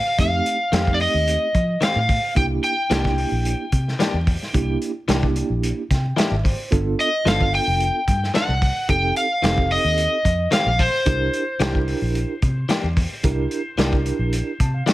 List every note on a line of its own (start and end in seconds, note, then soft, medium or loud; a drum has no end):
0.00 0.19 F5 medium
0.18 0.40 F2 medium
0.18 0.55 A3 medium
0.18 0.55 C4 medium
0.18 0.55 D#4 medium
0.18 0.56 G4 medium
0.18 0.97 F5 medium
0.18 kick loud
0.18 closed hi-hat medium
0.46 closed hi-hat medium
0.72 1.05 F2 medium
0.72 0.89 D#3 medium
0.72 1.45 A3 medium
0.72 0.90 A3 medium
0.72 1.46 C4 medium
0.72 0.90 C4 medium
0.72 1.46 D#4 medium
0.72 1.46 G4 medium
0.72 0.90 G4 medium
0.72 snare loud
0.72 closed hi-hat medium
0.87 kick medium
0.94 1.01 D5 medium
1.00 1.85 D#5 medium
1.00 open hi-hat medium
1.14 1.36 D#2 medium
1.28 closed hi-hat medium
1.55 1.76 F3 medium
1.55 kick medium
1.55 closed hi-hat medium
1.81 1.98 D#3 medium
1.81 1.99 A3 medium
1.81 1.99 C4 medium
1.81 1.99 G4 medium
1.81 2.33 F5 medium
1.81 snare loud
1.81 closed hi-hat medium
1.96 2.17 A2 medium
2.09 kick medium
2.09 open hi-hat medium
2.35 2.58 C2 loud
2.35 2.72 A#3 medium
2.35 2.72 D4 medium
2.35 2.72 E4 medium
2.35 2.73 G4 medium
2.35 2.44 G5 medium
2.35 kick loud
2.35 closed hi-hat medium
2.63 4.77 G5 medium
2.63 closed hi-hat medium
2.90 3.23 C2 medium
2.90 3.07 E3 medium
2.90 3.63 A#3 medium
2.90 3.08 A#3 medium
2.90 3.64 D4 medium
2.90 3.08 D4 medium
2.90 3.64 E4 medium
2.90 3.64 G4 medium
2.90 3.08 G4 medium
2.90 snare loud
2.90 closed hi-hat medium
3.05 kick medium
3.05 snare soft
3.18 open hi-hat medium
3.32 3.53 A#1 medium
3.45 closed hi-hat medium
3.72 3.94 C3 medium
3.72 kick medium
3.72 closed hi-hat medium
3.88 snare soft
3.99 4.16 E3 medium
3.99 4.17 A#3 medium
3.99 4.17 D4 medium
3.99 4.17 G4 medium
3.99 snare medium
3.99 closed hi-hat medium
4.14 4.35 E2 medium
4.27 kick medium
4.27 open hi-hat medium
4.43 snare soft
4.53 4.75 C2 medium
4.53 4.90 A#3 medium
4.53 4.90 D4 medium
4.53 4.91 E4 medium
4.53 4.91 G4 medium
4.53 kick loud
4.53 closed hi-hat medium
4.82 closed hi-hat medium
5.08 5.41 C2 medium
5.08 5.25 E3 medium
5.08 5.81 A#3 medium
5.08 5.25 A#3 medium
5.08 5.81 D4 medium
5.08 5.26 D4 medium
5.08 5.82 E4 medium
5.08 5.82 G4 medium
5.08 5.26 G4 medium
5.08 snare loud
5.08 closed hi-hat medium
5.23 kick medium
5.36 closed hi-hat medium
5.50 5.71 A#1 medium
5.63 closed hi-hat medium
5.90 6.12 C3 medium
5.90 6.15 G5 medium
5.90 kick medium
5.90 snare soft
5.90 closed hi-hat medium
6.16 6.34 E3 medium
6.16 6.34 A#3 medium
6.16 6.34 D4 medium
6.16 6.35 G4 medium
6.16 6.42 E5 medium
6.16 snare loud
6.16 closed hi-hat medium
6.31 6.53 G#1 medium
6.44 6.69 C5 medium
6.44 kick medium
6.44 open hi-hat medium
6.71 6.93 G1 medium
6.71 7.08 B3 medium
6.71 7.08 D4 medium
6.71 7.08 F4 medium
6.71 7.08 A4 medium
6.71 kick loud
6.71 closed hi-hat medium
7.00 7.28 D#5 medium
7.00 closed hi-hat medium
7.25 7.58 G1 medium
7.25 7.42 F3 medium
7.25 7.98 B3 medium
7.25 7.43 B3 medium
7.25 7.98 D4 medium
7.25 7.43 D4 medium
7.25 7.99 F4 medium
7.25 7.99 A4 medium
7.25 7.43 A4 medium
7.25 7.54 F5 loud
7.25 snare loud
7.25 closed hi-hat medium
7.41 kick medium
7.54 8.32 G5 loud
7.54 open hi-hat medium
7.67 7.89 F1 medium
7.80 closed hi-hat medium
8.07 8.29 G2 medium
8.07 kick medium
8.07 closed hi-hat medium
8.24 snare soft
8.34 8.51 F3 medium
8.34 8.51 B3 medium
8.34 8.52 D4 medium
8.34 8.52 A4 medium
8.34 8.90 F#5 loud
8.34 snare loud
8.34 closed hi-hat medium
8.49 8.70 C2 medium
8.62 kick medium
8.62 open hi-hat medium
8.89 9.10 F1 medium
8.89 9.25 C4 medium
8.89 9.26 D#4 medium
8.89 9.26 G4 medium
8.89 9.26 A4 medium
8.89 9.17 G5 medium
8.89 kick loud
8.89 closed hi-hat medium
9.16 9.73 F5 loud
9.16 closed hi-hat medium
9.42 9.76 F1 medium
9.42 9.60 D#3 medium
9.42 9.60 A3 medium
9.42 10.16 C4 medium
9.42 9.60 C4 medium
9.42 10.16 D#4 medium
9.42 10.16 G4 medium
9.42 9.61 G4 medium
9.42 10.16 A4 medium
9.42 snare loud
9.42 closed hi-hat medium
9.58 kick medium
9.71 10.49 D#5 medium
9.71 open hi-hat medium
9.84 10.06 D#2 medium
9.98 closed hi-hat medium
10.25 10.46 F2 medium
10.25 kick medium
10.25 closed hi-hat medium
10.51 10.68 D#3 medium
10.51 10.69 A3 medium
10.51 10.69 C4 medium
10.51 10.69 G4 medium
10.51 10.80 F5 loud
10.51 snare loud
10.51 closed hi-hat medium
10.66 10.88 A#1 medium
10.79 14.83 C5 medium
10.79 kick medium
10.79 open hi-hat medium
11.06 11.28 C2 loud
11.06 11.43 D4 medium
11.06 11.43 E4 medium
11.06 11.43 G4 medium
11.06 11.43 A#4 medium
11.06 kick loud
11.06 closed hi-hat medium
11.34 closed hi-hat medium
11.60 11.93 C2 medium
11.60 11.77 E3 medium
11.60 11.78 A#3 medium
11.60 12.33 D4 medium
11.60 11.78 D4 medium
11.60 12.34 E4 medium
11.60 12.34 G4 medium
11.60 11.78 G4 medium
11.60 12.34 A#4 loud
11.60 snare loud
11.60 closed hi-hat medium
11.75 kick medium
11.88 open hi-hat medium
12.02 12.23 A#1 medium
12.15 closed hi-hat medium
12.42 12.64 C3 medium
12.42 kick medium
12.42 closed hi-hat soft
12.69 12.86 E3 medium
12.69 12.87 A#3 medium
12.69 12.87 D4 medium
12.69 12.87 G4 loud
12.69 snare loud
12.69 closed hi-hat medium
12.84 13.05 E2 medium
12.97 kick medium
12.97 open hi-hat medium
13.23 13.45 C2 medium
13.23 13.60 D4 medium
13.23 13.61 E4 medium
13.23 13.61 G4 medium
13.23 13.61 A#4 medium
13.23 kick loud
13.23 closed hi-hat medium
13.51 closed hi-hat medium
13.78 14.11 C2 medium
13.78 13.95 E3 medium
13.78 13.95 A#3 medium
13.78 14.51 D4 medium
13.78 13.96 D4 medium
13.78 14.51 E4 medium
13.78 14.51 G4 medium
13.78 13.96 G4 medium
13.78 14.52 A#4 medium
13.78 snare loud
13.78 closed hi-hat medium
13.93 kick medium
14.06 closed hi-hat medium
14.19 14.41 A#1 medium
14.33 closed hi-hat medium
14.60 14.81 C3 medium
14.60 14.74 A5 medium
14.60 kick medium
14.60 closed hi-hat medium
14.74 14.86 F5 medium
14.86 14.93 E3 medium
14.86 14.93 A#3 medium
14.86 14.93 D4 medium
14.86 14.93 G4 medium
14.86 14.93 E5 medium
14.86 snare loud
14.86 closed hi-hat medium